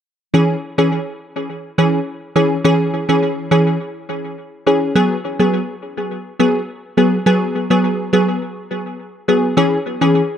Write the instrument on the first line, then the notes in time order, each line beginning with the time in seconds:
synth stab
0.34 E3 C#4 G#4
0.78 E3 C#4 G#4
1.78 E3 C#4 G#4
2.36 E3 C#4 G#4
2.64 E3 C#4 G#4
3.09 E3 C#4 G#4
3.51 E3 C#4 G#4
4.66 E3 C#4 G#4
4.95 F#3 B3 G#4
5.39 F#3 B3 G#4
6.39 F#3 B3 G#4
6.97 F#3 B3 G#4
7.26 F#3 B3 G#4
7.70 F#3 B3 G#4
8.13 F#3 B3 G#4
9.28 F#3 B3 G#4
9.57 E3 C#4 G#4
10.01 E3 C#4 G#4